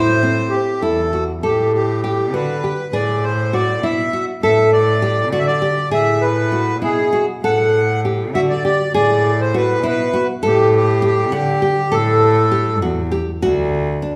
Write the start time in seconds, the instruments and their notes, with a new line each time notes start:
Already playing: cello A2, nylon-string guitar E4, accordion C5
0.23 nylon-string guitar C4
0.49 accordion G4
0.81 cello E2, nylon-string guitar E4, accordion A4
1.13 nylon-string guitar F#4
1.42 cello A2, accordion G4, nylon-string guitar A4
1.74 accordion G4
2.02 accordion G4, nylon-string guitar G4
2.33 cello D3, nylon-string guitar F#4, accordion B4
2.64 nylon-string guitar G4
2.93 cello A2, nylon-string guitar G#4, accordion D5
3.23 accordion C5
3.53 nylon-string guitar F#4, accordion D5
3.82 cello B2, nylon-string guitar E4, accordion E5
4.13 nylon-string guitar F#4
4.42 cello A2, nylon-string guitar A4, accordion E5
4.73 accordion D5
5.02 nylon-string guitar G4
5.31 cello D3, nylon-string guitar F#4, accordion D5
5.39 accordion E5
5.47 accordion D5
5.62 nylon-string guitar G4
5.91 cello A2, nylon-string guitar G#4, accordion E5
6.22 accordion B4
6.52 nylon-string guitar F#4
6.81 cello B2, nylon-string guitar E4, accordion G#4
7.13 nylon-string guitar F#4
7.43 cello A2, nylon-string guitar A4, accordion F#5
8.05 nylon-string guitar G4
8.34 cello D3, nylon-string guitar F#4, accordion E5
8.50 accordion D5
8.65 nylon-string guitar G4, accordion D5
8.94 cello A2, nylon-string guitar G#4, accordion D5
9.41 accordion C5
9.54 nylon-string guitar F#4, accordion B4
9.83 cello B2, nylon-string guitar E4
9.87 accordion B4
10.13 nylon-string guitar F#4
10.43 cello A2, nylon-string guitar A4
10.47 accordion G4
10.76 accordion G4
11.02 nylon-string guitar G4, accordion G4
11.32 cello D3, accordion G4, nylon-string guitar F#5
11.62 nylon-string guitar G4
11.92 cello A2, nylon-string guitar A4, accordion A4
12.52 nylon-string guitar G4
12.82 cello E2, nylon-string guitar F#4
13.12 nylon-string guitar G4
13.42 cello D2, nylon-string guitar F#4
14.02 nylon-string guitar D4